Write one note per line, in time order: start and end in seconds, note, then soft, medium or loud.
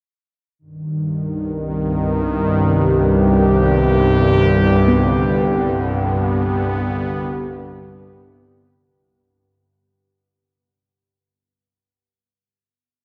0.59 9.09 C2 medium
0.59 9.09 G2 medium
0.59 4.78 D#3 medium
0.59 9.01 B3 medium
0.59 9.01 B4 medium
2.49 4.78 C3 medium
2.49 8.98 G4 medium
4.81 8.98 D3 medium
4.88 11.20 B3 medium
5.14 8.97 B3 medium